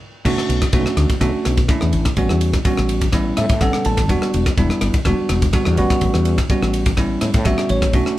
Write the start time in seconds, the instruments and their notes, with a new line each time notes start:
0.25 fretless electric bass B1, tine electric piano A3 C#4 D4 F#4, kick, crash
0.38 muted fretless electric bass stroke, cross-stick
0.49 fretless electric bass B1, ride
0.62 kick, cross-stick, ride
0.73 fretless electric bass B1, tine electric piano A3 C#4 D4 F#4, kick, ride
0.86 cross-stick
0.97 fretless electric bass D2, cross-stick, ride
1.10 kick, ride
1.21 fretless electric bass B1, tine electric piano A3 C#4 D4 F#4, kick, cross-stick, ride
1.35 muted fretless electric bass stroke
1.45 fretless electric bass B1, cross-stick, ride
1.57 kick, ride
1.69 tine electric piano A3 C#4 D4 E4, kick, cross-stick, ride
1.81 fretless electric bass E2, cross-stick
1.93 fretless electric bass A1, ride
2.05 muted fretless electric bass stroke, kick, cross-stick, ride
2.17 fretless electric bass A1, tine electric piano G3 B3 C#4 F#4, kick, ride
2.29 fretless electric bass E2, cross-stick
2.41 ride
2.53 kick, cross-stick, ride
2.65 tine electric piano G3 B3 C#4 F#4, kick, ride
2.77 fretless electric bass A1, cross-stick
2.89 ride
3.01 kick, ride
3.12 tine electric piano G3 B3 C#4 E4, kick, cross-stick, ride
3.37 fretless electric bass A2, tine electric piano E5, cross-stick, ride
3.49 fretless electric bass A2, kick, ride
3.61 fretless electric bass A1, tine electric piano G3 B3 C#4 A4 F#5, kick, cross-stick, ride
3.73 muted fretless electric bass stroke, cross-stick
3.85 fretless electric bass A1, tine electric piano A5, ride
3.97 kick, cross-stick, ride
4.09 fretless electric bass E1, tine electric piano G3 B3 D4 F#4, kick, ride
4.22 cross-stick
4.34 fretless electric bass E1, ride
4.46 kick, cross-stick, ride
4.58 fretless electric bass E1, tine electric piano G3 B3 D4 E4, kick, ride
4.70 cross-stick
4.81 fretless electric bass G1, cross-stick, ride
4.94 kick, ride
5.05 fretless electric bass E1, tine electric piano G3 B3 D4 F#4, kick, cross-stick, ride
5.18 muted fretless electric bass stroke
5.29 fretless electric bass E1, cross-stick, ride
5.42 kick, ride
5.53 tine electric piano G3 B3 D4 F#4, kick, cross-stick, ride
5.65 fretless electric bass E2, cross-stick
5.77 fretless electric bass A1, tine electric piano G3 B3 C#4 F#4, ride
5.90 kick, cross-stick, ride
6.01 fretless electric bass A1, kick, ride
6.14 fretless electric bass E2, cross-stick
6.25 ride
6.38 kick, cross-stick, ride
6.50 tine electric piano G3 B3 C#4 F#4, kick, ride
6.62 fretless electric bass A1, cross-stick
6.73 ride
6.86 kick, ride
6.97 tine electric piano G3 B3 C#4 E4, kick, cross-stick, ride
7.21 fretless electric bass A2, cross-stick, ride
7.34 fretless electric bass A2, kick, ride
7.45 fretless electric bass A1, tine electric piano G3 B3 C#4 F#4 E5, kick, cross-stick, ride
7.58 cross-stick
7.69 fretless electric bass A1, tine electric piano C#5, ride
7.82 kick, cross-stick, ride
7.93 fretless electric bass B1, tine electric piano A3 C#4 D4 F#4, kick, ride
8.06 muted fretless electric bass stroke, cross-stick